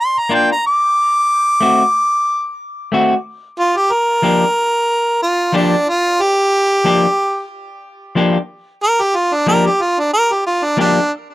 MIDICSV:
0, 0, Header, 1, 3, 480
1, 0, Start_track
1, 0, Key_signature, -2, "minor"
1, 0, Tempo, 655165
1, 699, Time_signature, 4, 2, 24, 8
1, 8312, End_track
2, 0, Start_track
2, 0, Title_t, "Harmonica"
2, 0, Program_c, 0, 22
2, 6, Note_on_c, 0, 84, 79
2, 139, Note_on_c, 0, 82, 75
2, 150, Note_off_c, 0, 84, 0
2, 254, Note_on_c, 0, 79, 81
2, 265, Note_off_c, 0, 82, 0
2, 360, Note_off_c, 0, 79, 0
2, 384, Note_on_c, 0, 82, 80
2, 470, Note_off_c, 0, 82, 0
2, 492, Note_on_c, 0, 86, 94
2, 1886, Note_off_c, 0, 86, 0
2, 2634, Note_on_c, 0, 65, 85
2, 2761, Note_on_c, 0, 67, 88
2, 2772, Note_off_c, 0, 65, 0
2, 2874, Note_on_c, 0, 70, 85
2, 2885, Note_off_c, 0, 67, 0
2, 3797, Note_off_c, 0, 70, 0
2, 3830, Note_on_c, 0, 65, 79
2, 4078, Note_on_c, 0, 62, 78
2, 4089, Note_off_c, 0, 65, 0
2, 4318, Note_on_c, 0, 65, 93
2, 4329, Note_off_c, 0, 62, 0
2, 4555, Note_on_c, 0, 67, 98
2, 4566, Note_off_c, 0, 65, 0
2, 5478, Note_off_c, 0, 67, 0
2, 6474, Note_on_c, 0, 70, 108
2, 6605, Note_on_c, 0, 67, 100
2, 6616, Note_off_c, 0, 70, 0
2, 6710, Note_on_c, 0, 65, 88
2, 6721, Note_off_c, 0, 67, 0
2, 6844, Note_on_c, 0, 62, 91
2, 6855, Note_off_c, 0, 65, 0
2, 6938, Note_off_c, 0, 62, 0
2, 6949, Note_on_c, 0, 70, 97
2, 7080, Note_on_c, 0, 67, 87
2, 7091, Note_off_c, 0, 70, 0
2, 7194, Note_on_c, 0, 65, 81
2, 7205, Note_off_c, 0, 67, 0
2, 7323, Note_on_c, 0, 62, 79
2, 7334, Note_off_c, 0, 65, 0
2, 7417, Note_off_c, 0, 62, 0
2, 7427, Note_on_c, 0, 70, 118
2, 7564, Note_on_c, 0, 67, 87
2, 7575, Note_off_c, 0, 70, 0
2, 7658, Note_off_c, 0, 67, 0
2, 7668, Note_on_c, 0, 65, 86
2, 7795, Note_on_c, 0, 62, 87
2, 7806, Note_off_c, 0, 65, 0
2, 7893, Note_off_c, 0, 62, 0
2, 7916, Note_on_c, 0, 62, 97
2, 8140, Note_off_c, 0, 62, 0
2, 8312, End_track
3, 0, Start_track
3, 0, Title_t, "Clean electric guitar"
3, 0, Program_c, 1, 27
3, 215, Note_on_c, 1, 58, 73
3, 223, Note_on_c, 1, 62, 81
3, 230, Note_on_c, 1, 65, 83
3, 370, Note_off_c, 1, 58, 0
3, 374, Note_off_c, 1, 62, 0
3, 378, Note_off_c, 1, 65, 0
3, 1176, Note_on_c, 1, 57, 76
3, 1185, Note_on_c, 1, 60, 78
3, 1193, Note_on_c, 1, 66, 76
3, 1331, Note_off_c, 1, 57, 0
3, 1335, Note_off_c, 1, 60, 0
3, 1339, Note_off_c, 1, 66, 0
3, 2138, Note_on_c, 1, 57, 78
3, 2147, Note_on_c, 1, 60, 79
3, 2153, Note_on_c, 1, 66, 97
3, 2292, Note_off_c, 1, 57, 0
3, 2296, Note_off_c, 1, 60, 0
3, 2299, Note_off_c, 1, 66, 0
3, 3094, Note_on_c, 1, 53, 71
3, 3100, Note_on_c, 1, 58, 80
3, 3105, Note_on_c, 1, 62, 73
3, 3109, Note_on_c, 1, 67, 75
3, 3250, Note_off_c, 1, 53, 0
3, 3253, Note_off_c, 1, 58, 0
3, 3255, Note_off_c, 1, 62, 0
3, 3257, Note_off_c, 1, 67, 0
3, 4048, Note_on_c, 1, 53, 77
3, 4055, Note_on_c, 1, 58, 67
3, 4058, Note_on_c, 1, 62, 87
3, 4063, Note_on_c, 1, 67, 83
3, 4206, Note_off_c, 1, 53, 0
3, 4210, Note_off_c, 1, 58, 0
3, 4211, Note_off_c, 1, 62, 0
3, 4214, Note_off_c, 1, 67, 0
3, 5014, Note_on_c, 1, 53, 71
3, 5019, Note_on_c, 1, 58, 69
3, 5023, Note_on_c, 1, 62, 74
3, 5029, Note_on_c, 1, 67, 80
3, 5169, Note_off_c, 1, 53, 0
3, 5172, Note_off_c, 1, 58, 0
3, 5174, Note_off_c, 1, 62, 0
3, 5177, Note_off_c, 1, 67, 0
3, 5974, Note_on_c, 1, 53, 86
3, 5979, Note_on_c, 1, 58, 80
3, 5983, Note_on_c, 1, 62, 99
3, 5989, Note_on_c, 1, 67, 90
3, 6129, Note_off_c, 1, 53, 0
3, 6132, Note_off_c, 1, 58, 0
3, 6134, Note_off_c, 1, 62, 0
3, 6136, Note_off_c, 1, 67, 0
3, 6934, Note_on_c, 1, 53, 78
3, 6940, Note_on_c, 1, 58, 67
3, 6943, Note_on_c, 1, 62, 79
3, 6948, Note_on_c, 1, 67, 75
3, 7089, Note_off_c, 1, 53, 0
3, 7092, Note_off_c, 1, 58, 0
3, 7093, Note_off_c, 1, 62, 0
3, 7096, Note_off_c, 1, 67, 0
3, 7890, Note_on_c, 1, 53, 76
3, 7895, Note_on_c, 1, 58, 81
3, 7901, Note_on_c, 1, 62, 79
3, 7905, Note_on_c, 1, 67, 79
3, 8047, Note_off_c, 1, 53, 0
3, 8049, Note_off_c, 1, 58, 0
3, 8053, Note_off_c, 1, 62, 0
3, 8054, Note_off_c, 1, 67, 0
3, 8312, End_track
0, 0, End_of_file